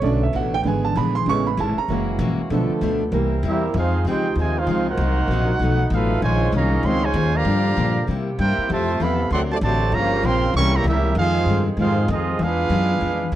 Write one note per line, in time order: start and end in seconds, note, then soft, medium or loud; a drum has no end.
0.00 0.32 B1 loud
0.00 0.25 D3 medium
0.00 0.64 F#3 medium
0.00 0.25 A3 medium
0.00 1.26 B3 medium
0.00 0.26 C#4 medium
0.00 1.26 D4 medium
0.00 0.64 A4 medium
0.00 0.22 D5 medium
0.04 0.24 B2 medium
0.04 0.24 A3 medium
0.04 0.25 D4 medium
0.04 0.25 F#4 medium
0.23 0.34 E5 medium
0.33 0.63 A1 medium
0.33 0.54 B2 medium
0.33 0.54 A3 medium
0.33 0.55 D4 medium
0.33 0.55 F#4 medium
0.33 0.54 F#5 medium
0.54 0.61 G5 loud
0.62 0.94 G#1 medium
0.62 1.24 D3 medium
0.62 1.87 E3 medium
0.62 0.85 E3 medium
0.62 1.24 G#3 medium
0.62 1.24 B3 medium
0.62 0.86 B3 medium
0.62 1.87 G#4 medium
0.62 0.65 G5 soft
0.67 0.86 D4 medium
0.67 0.87 G#4 medium
0.67 0.85 G#5 medium
0.85 0.96 A5 medium
0.95 1.25 A#1 loud
0.95 1.16 E3 medium
0.95 1.17 B3 medium
0.95 1.17 D4 medium
0.95 1.18 G#4 medium
0.95 1.15 B5 medium
1.15 1.27 C6 medium
1.26 1.56 A1 medium
1.26 1.47 A2 medium
1.26 1.50 C#3 medium
1.26 1.50 G#3 medium
1.26 1.48 G#3 medium
1.26 1.89 A3 medium
1.26 1.51 B3 medium
1.26 2.50 C#4 medium
1.26 1.48 C#4 medium
1.26 1.47 C#6 loud
1.30 1.49 E4 medium
1.47 1.58 B5 medium
1.57 1.75 G#1 loud
1.57 1.78 A2 medium
1.57 1.78 G#3 medium
1.57 1.79 C#4 medium
1.57 1.79 E4 medium
1.57 1.78 A5 medium
1.77 2.47 A#5 medium
1.77 muted upright bass stroke soft
1.88 2.18 F#1 medium
1.88 2.09 F#2 medium
1.88 2.50 E3 medium
1.88 2.10 E3 medium
1.88 2.48 E3 soft
1.88 2.48 G#3 medium
1.88 2.51 A#3 medium
1.88 2.49 A#3 medium
1.88 2.10 A#3 medium
1.88 2.10 C#4 medium
1.88 2.51 F#4 medium
2.19 2.37 A#1 loud
2.19 2.40 F#2 medium
2.19 2.40 E3 medium
2.19 2.41 A#3 medium
2.19 2.41 C#4 medium
2.38 muted upright bass stroke soft
2.50 2.68 B1 medium
2.50 2.71 B2 medium
2.50 2.99 D3 medium
2.50 3.12 F3 medium
2.50 2.72 F3 medium
2.50 2.99 F3 medium
2.50 2.72 A3 medium
2.50 2.99 A3 medium
2.50 3.13 B3 medium
2.50 3.12 D4 medium
2.50 2.73 D4 medium
2.50 3.12 A4 medium
2.69 muted upright bass stroke soft
2.81 3.11 D2 medium
2.81 3.02 B2 medium
2.81 3.02 F3 medium
2.81 3.03 A3 medium
2.81 3.03 D4 medium
3.12 3.42 C2 medium
3.12 3.32 C3 medium
3.12 3.35 E3 soft
3.12 3.74 G3 medium
3.12 3.35 G3 soft
3.12 3.33 G3 medium
3.12 3.36 A#3 medium
3.12 3.33 A#3 medium
3.12 3.74 C4 medium
3.12 3.74 E4 medium
3.12 3.34 E4 medium
3.12 3.74 A#4 medium
3.43 3.73 E2 loud
3.43 3.64 C3 medium
3.43 3.64 G3 medium
3.43 3.64 A#3 medium
3.43 3.74 A#3 medium
3.43 3.74 C4 medium
3.43 3.65 E4 medium
3.43 3.74 E4 medium
3.43 3.74 E5 loud
3.47 3.74 G3 medium
3.47 3.74 G4 medium
3.47 3.74 A#4 medium
3.74 4.04 F2 loud
3.74 6.20 D#3 medium
3.74 3.95 F3 medium
3.74 4.98 G#3 medium
3.74 4.07 G#3 medium
3.74 3.95 C4 medium
3.74 5.59 C4 medium
3.74 3.96 D#4 medium
3.74 4.98 F4 medium
3.74 4.07 F4 medium
3.74 3.96 G#4 medium
3.74 4.07 C5 medium
3.74 4.07 F5 medium
3.78 4.06 C4 medium
3.78 4.07 D#4 medium
3.78 4.07 G#4 medium
4.04 4.35 C#2 medium
4.04 4.26 F3 medium
4.04 4.26 C4 medium
4.04 4.35 C4 medium
4.04 4.35 D#4 medium
4.04 4.27 D#4 medium
4.04 4.35 G4 medium
4.04 4.27 G#4 medium
4.09 4.36 F4 medium
4.09 4.36 C5 medium
4.09 4.36 D#5 medium
4.09 4.36 G5 medium
4.35 4.66 D#2 medium
4.35 4.57 C3 medium
4.35 4.56 D#3 medium
4.35 4.57 F3 medium
4.35 4.56 G#3 medium
4.35 4.58 C4 medium
4.40 4.58 D#4 medium
4.40 4.57 F4 medium
4.40 4.59 G#4 medium
4.40 4.57 C5 medium
4.40 4.57 D#5 medium
4.40 4.57 G#5 medium
4.57 4.87 G#3 medium
4.57 4.87 C4 medium
4.57 4.88 D#4 medium
4.57 4.87 F4 medium
4.57 4.88 G#4 medium
4.57 4.88 C5 medium
4.57 4.88 F5 medium
4.67 4.97 C#2 loud
4.67 4.88 F3 medium
4.67 4.88 C4 medium
4.67 4.89 D#4 medium
4.67 4.89 G#4 medium
4.88 5.57 A#3 medium
4.88 5.88 D#4 medium
4.88 5.89 D#4 medium
4.88 5.88 F#4 medium
4.88 5.58 A#4 medium
4.88 5.58 C5 medium
4.88 5.89 F#5 medium
4.97 5.27 C2 loud
4.97 5.19 C3 medium
4.97 5.19 F#3 medium
4.97 5.60 A#3 medium
4.97 5.20 A#3 medium
4.97 5.60 F#4 medium
5.02 5.20 D#4 medium
5.28 5.58 A#1 medium
5.28 5.50 C3 medium
5.28 5.50 F#3 medium
5.32 5.51 A#3 medium
5.32 5.51 D#4 medium
5.59 5.90 B1 medium
5.59 5.81 B2 medium
5.59 5.81 F3 medium
5.59 6.22 A3 medium
5.59 5.82 A3 medium
5.59 6.22 B3 medium
5.59 6.21 D#4 medium
5.64 5.82 D#4 medium
5.90 6.21 A1 loud
5.90 6.11 B2 medium
5.90 6.12 F3 medium
5.90 6.23 F#3 medium
5.90 6.12 A3 medium
5.90 6.23 A3 medium
5.90 6.23 D#4 medium
5.90 6.12 D#4 medium
5.90 6.23 F4 medium
5.90 6.23 A4 medium
5.90 6.23 B4 medium
5.90 6.23 F5 loud
6.22 6.52 A#1 loud
6.22 6.42 A#2 medium
6.22 6.52 C#3 medium
6.22 6.43 D#3 medium
6.22 6.53 F3 medium
6.22 7.28 G#3 medium
6.22 6.43 G#3 medium
6.22 6.52 G#3 loud
6.22 7.28 A#3 medium
6.22 7.28 C#4 medium
6.22 6.44 C#4 medium
6.22 7.28 D#4 loud
6.22 6.52 F4 medium
6.22 6.51 C5 medium
6.22 6.52 C#5 medium
6.22 6.52 G#5 loud
6.52 6.82 C2 loud
6.52 6.72 A#2 medium
6.52 6.73 D#3 medium
6.52 6.83 F3 medium
6.52 6.73 G#3 medium
6.52 6.83 A#3 medium
6.52 6.74 C#4 medium
6.52 6.83 C#4 medium
6.52 6.83 G#4 medium
6.52 6.83 C#5 medium
6.52 6.83 F5 medium
6.56 6.83 A#5 medium
6.83 7.13 C#2 medium
6.83 7.04 A#2 medium
6.83 7.05 D#3 medium
6.83 7.03 F3 loud
6.83 7.03 G#3 loud
6.83 7.05 G#3 medium
6.83 7.03 C4 loud
6.83 7.05 C#4 medium
6.83 7.04 G#4 medium
6.83 7.04 C#5 medium
6.83 7.04 F5 medium
6.83 7.04 C6 loud
7.04 7.35 C#3 medium
7.04 7.33 F3 medium
7.04 7.34 G#3 medium
7.04 7.35 F4 medium
7.04 7.35 C5 medium
7.04 7.35 C#5 medium
7.04 7.35 G#5 loud
7.14 7.44 D#2 loud
7.14 7.34 A#2 medium
7.14 7.35 D#3 medium
7.14 7.35 G#3 medium
7.14 7.35 C#4 medium
7.34 8.13 D3 loud
7.34 8.13 F3 medium
7.34 8.13 A#3 medium
7.34 8.13 G4 medium
7.34 8.13 D5 loud
7.34 8.13 F5 loud
7.34 8.13 A#5 loud
7.45 7.65 G2 medium
7.45 7.75 G2 loud
7.45 8.07 D3 medium
7.45 7.66 F3 medium
7.45 8.06 G3 medium
7.45 8.68 A#3 medium
7.45 7.67 A#3 medium
7.45 7.67 D4 medium
7.45 8.07 F4 medium
7.76 7.97 G2 medium
7.76 8.07 A#2 medium
7.76 7.97 F3 medium
7.76 7.97 A#3 medium
7.76 7.98 D4 medium
8.06 8.28 C3 medium
8.06 9.91 C3 medium
8.06 8.38 C3 medium
8.06 8.68 G3 medium
8.06 8.28 G3 medium
8.06 8.29 A#3 medium
8.06 9.29 G4 medium
8.11 8.29 E4 medium
8.38 8.56 G2 loud
8.38 8.59 C3 medium
8.38 8.59 G3 medium
8.38 8.67 A#3 medium
8.38 8.59 A#3 medium
8.38 8.67 E4 medium
8.38 8.68 E4 medium
8.38 8.60 E4 medium
8.38 8.67 G4 medium
8.38 8.68 A#4 medium
8.38 8.68 C5 medium
8.38 8.68 G5 medium
8.58 muted upright bass stroke soft
8.69 9.00 F2 loud
8.69 9.00 C3 medium
8.69 8.89 F3 medium
8.69 9.01 F3 medium
8.69 9.01 A3 loud
8.69 9.32 A3 medium
8.69 8.90 C4 medium
8.69 8.91 E4 medium
8.69 9.02 F4 medium
8.69 8.91 A4 medium
8.69 9.02 C5 medium
8.69 9.02 E5 loud
8.73 9.02 A5 loud
9.00 9.30 E2 medium
9.00 9.32 C3 medium
9.00 9.32 E3 medium
9.00 9.21 F3 medium
9.00 9.32 B3 medium
9.00 9.21 C4 medium
9.00 9.21 E4 medium
9.00 9.21 A4 medium
9.00 9.32 A4 medium
9.00 9.33 E5 medium
9.00 9.33 F5 medium
9.00 9.32 B5 medium
9.30 9.61 D2 medium
9.30 9.51 D3 medium
9.30 9.93 F#3 medium
9.30 9.42 F#3 medium
9.30 9.41 A3 loud
9.30 9.52 C4 medium
9.30 9.41 C4 loud
9.30 9.93 D4 medium
9.30 9.52 F#4 medium
9.30 9.41 A4 loud
9.30 9.53 A#4 medium
9.30 9.41 D5 medium
9.30 9.41 F#5 medium
9.30 9.41 C6 medium
9.52 9.57 C3 medium
9.52 9.57 F#3 medium
9.52 9.57 A3 medium
9.52 9.57 F#4 medium
9.52 9.57 C5 medium
9.52 9.57 D5 medium
9.52 9.57 A5 medium
9.61 9.91 A1 loud
9.61 9.92 C3 loud
9.61 9.82 D3 medium
9.61 9.92 F#3 loud
9.61 9.92 A3 medium
9.61 9.83 C4 medium
9.61 9.91 F#4 medium
9.61 9.83 F#4 medium
9.61 9.83 A#4 medium
9.61 9.91 C5 medium
9.61 9.92 D5 medium
9.61 9.91 A5 loud
9.92 10.22 G1 medium
9.92 10.12 G2 medium
9.92 10.55 C#3 medium
9.92 10.13 F3 medium
9.92 10.23 F3 loud
9.92 10.55 G3 medium
9.92 10.13 A#3 medium
9.92 10.14 C#4 medium
9.92 10.55 F4 medium
9.92 10.25 G4 medium
9.92 10.25 C#5 loud
9.92 10.23 F5 loud
9.92 10.25 A#5 loud
9.96 10.24 C#3 medium
9.96 10.25 A#3 loud
10.23 10.53 A#1 medium
10.23 10.44 G2 medium
10.23 10.55 C#3 loud
10.23 10.44 F3 medium
10.23 10.55 F3 loud
10.23 10.45 A#3 medium
10.23 10.55 C4 loud
10.23 10.45 C#4 medium
10.23 10.55 A#4 medium
10.23 10.55 F5 medium
10.23 10.55 G5 medium
10.23 10.55 C6 loud
10.54 10.83 C2 medium
10.54 10.75 C3 medium
10.54 12.39 C3 medium
10.54 11.17 C#3 medium
10.54 10.76 E3 medium
10.54 10.73 G3 loud
10.54 10.73 A#3 loud
10.54 10.76 A#3 medium
10.54 10.72 C#4 loud
10.54 11.17 E4 medium
10.54 10.73 A#4 medium
10.54 10.73 E5 medium
10.54 10.73 G5 loud
10.54 10.74 C#6 loud
10.58 10.77 C#4 medium
10.75 10.87 E3 medium
10.75 10.86 G3 medium
10.75 10.85 A#3 medium
10.75 10.87 G4 loud
10.75 10.87 C#5 medium
10.75 10.87 E5 medium
10.75 10.87 A#5 loud
10.84 11.14 C#2 loud
10.84 11.06 C3 medium
10.84 11.06 E3 medium
10.84 11.15 G3 medium
10.84 11.15 A#3 medium
10.84 11.07 A#3 medium
10.84 11.07 C#4 medium
10.84 11.16 C#4 medium
10.84 11.15 E4 medium
10.84 11.16 G4 medium
10.84 11.16 A#4 medium
10.88 11.16 E5 loud
11.15 11.45 F2 loud
11.15 11.36 F2 medium
11.15 12.39 D#3 medium
11.15 11.37 D#3 medium
11.15 11.37 G#3 medium
11.15 11.64 G#3 loud
11.15 11.64 C4 medium
11.15 11.38 C4 medium
11.15 11.64 D#4 medium
11.15 11.64 F4 loud
11.15 13.35 G#4 medium
11.15 11.64 G#4 loud
11.15 11.64 C5 loud
11.15 11.64 F5 loud
11.46 11.68 F2 medium
11.46 11.76 G2 medium
11.46 11.68 D#3 medium
11.46 11.68 G#3 medium
11.46 11.69 C4 medium
11.77 11.98 F2 medium
11.77 12.08 G#2 medium
11.77 11.99 D#3 medium
11.77 12.07 G#3 medium
11.77 11.99 G#3 medium
11.77 12.07 C4 medium
11.77 12.00 C4 medium
11.77 12.07 F4 loud
11.77 12.08 C5 medium
11.81 12.09 D#4 medium
11.81 12.09 G#4 medium
11.81 12.09 F5 medium
12.08 12.29 F2 medium
12.08 12.38 F2 loud
12.08 12.29 D#3 medium
12.08 12.38 G#3 medium
12.08 12.30 G#3 medium
12.08 12.38 C4 medium
12.08 12.30 C4 medium
12.08 12.39 C4 medium
12.08 12.38 D#4 medium
12.08 12.39 F4 medium
12.08 12.39 G#4 medium
12.08 12.39 D#5 medium
12.39 12.69 E2 loud
12.39 12.60 E3 medium
12.39 13.35 E3 medium
12.39 12.61 G#3 medium
12.39 13.33 B3 medium
12.39 13.35 D4 medium
12.39 12.61 D4 medium
12.39 13.33 D4 medium
12.39 13.34 D4 medium
12.39 13.33 F4 medium
12.39 12.62 F4 medium
12.39 13.34 G#4 medium
12.39 13.34 B4 medium
12.39 13.34 F5 loud
12.70 13.00 F#2 medium
12.70 12.91 E3 medium
12.70 12.91 G#3 medium
12.70 12.91 D4 medium
12.70 12.92 F4 medium
13.00 13.31 F2 medium
13.00 13.21 E3 medium
13.00 13.22 G#3 medium
13.00 13.22 D4 medium
13.00 13.23 F4 medium
13.32 13.35 E2 loud